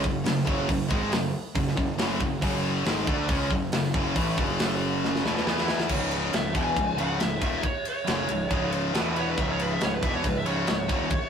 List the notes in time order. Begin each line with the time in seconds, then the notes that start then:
0.03 F#1 F#2 C#3, kick
0.24 F#1 F#2 C#3, snare, open hi-hat
0.37 snare
0.45 F#1 F#2 C#3 F#3, kick
0.68 F#1 F#2 C#3, kick, open hi-hat
0.89 G#1 G#2 D#3 G#3, kick
1.12 F#1 F#2 C#3, snare, open hi-hat
1.55 F#1 F#2 C#3, kick, open hi-hat
1.67 snare
1.76 F#1 F#2 C#3, kick
1.98 F#1 F#2 C#3 F#3, snare, open hi-hat
2.21 F#1 F#2 C#3, kick
2.42 F#1 F#2 C#3 F#3, kick, open hi-hat
2.86 G#1 G#2 D#3 G#3, snare, open hi-hat
3.07 D2 D3 A3 D4, kick
3.29 C#2 C#3 G#3 C#4, kick, open hi-hat
3.51 F#1 F#2 C#3, kick
3.72 F#1 F#2 C#3, snare, open hi-hat
3.84 snare
3.94 F#1 F#2 C#3 F#3, kick
4.16 A1 A2 E3 A3, kick, open hi-hat
4.38 F#1 F#2 C#3 F#3, kick
4.59 snare, open hi-hat
5.04 snare
5.15 snare
5.25 E1 E2 B2 E3, snare
5.37 snare
5.46 E2 E3 B3 E4, snare
5.58 snare
5.68 snare
5.80 snare
5.89 C#1 C#2 G#2 C#3, kick, crash
6.11 ride
6.33 C#1 C#2 G#2 E5, snare, ride
6.55 E1 E2 B2 E3 G#5, kick, ride
6.76 C#1 C#2 G#2, kick, ride
6.98 C#1 C#2 G#2 C#3 F#5, ride
7.20 C#1 C#2 G#2 E5, snare, ride
7.41 D#1 D#2 A#2 D#3 E5, kick, ride
7.63 C#5, kick, ride
7.85 C#5, ride
8.07 F#1 F#2 C#3 F#3, snare, ride
8.29 C#1 C#2 G#2, ride
8.51 C#1 C#2 G#2 C#3, kick, ride
8.72 ride
8.94 E1 E2 B2 E3, snare, ride
9.16 C#5, ride
9.29 B4
9.38 C#1 C#2 G#2 C#3 E5, kick, ride
9.51 C#5
9.60 B4, ride
9.72 E5
9.81 C#1 C#2 G#2 C#5, snare, ride
9.94 B4
10.03 E1 E2 B2 E3 E5, kick, ride
10.15 C#5
10.24 C#1 C#2 G#2 B4, kick, ride
10.38 E5
10.45 C#1 C#2 G#2 C#3 C#5, ride
10.67 C#1 C#2 G#2, snare, ride
10.88 D#1 D#2 A#2 D#3, kick, ride
11.10 kick, ride